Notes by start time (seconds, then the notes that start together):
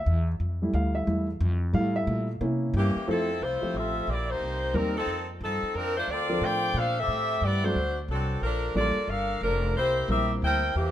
Already playing: E5
0.06 E2
0.40 F2
0.62 G3 A3 E4
0.73 D2 F5
0.95 E5
1.07 E2 G3 A3 E4
1.40 F2
1.73 A2 G3 A3 E4 F5
1.96 E5
2.07 A#2
2.41 C3 A#3 C#4 E4
2.74 G2 E3 A#3 C#4 G4
2.96 muted upright bass stroke
3.07 F2 F3 A3 C4 E4 A4
3.41 C2 A3 E4 F4 C5
3.61 F3 A3 C4 G4 E5, muted upright bass stroke
3.74 A1 C4 F4 A4 E5
4.07 A#1 A#3 E4 G4 D5
4.30 A#3 D#4 G4 C5
4.40 C2
4.74 D#2 G3 A#3 C4 D#4 A#4
4.97 F3 C4 D#4 A4
5.07 F2
5.41 G2 F3 C4 D#4 A4
5.63 muted upright bass stroke
5.75 F2 F3 C4 D4 A#4
5.97 A3 D4 F4 C5
6.08 D2 C4 F4 A4 D5
6.29 F3 C4 D4 A4 A#4
6.41 A2 F4 C5 D5 G5
6.74 A#2 D4 A4 C5 F5
6.99 C4 G4 A4 E5
7.08 A2
7.42 G2 B3 E4 G4 D5
7.64 F#3 A3 C4 D4 F#4 A4 C5
7.75 D2
8.08 C2 F#3 C4 D4 A4
8.42 A#1 F3 D4 A4 A#4
8.75 A1 G3 A#3 D4 F4 A4 D5
9.08 G1 D4 A4 A#4 F5
9.41 F1 F3 D4 A4 A#4
9.75 C2 A#3 E4 G4 C5
10.08 A#1 G3 A#3 C4 E4 G4 A#4 E5
10.42 D2 E4 A#4 C5 G5
10.75 E2 E3 A#3 C4 G4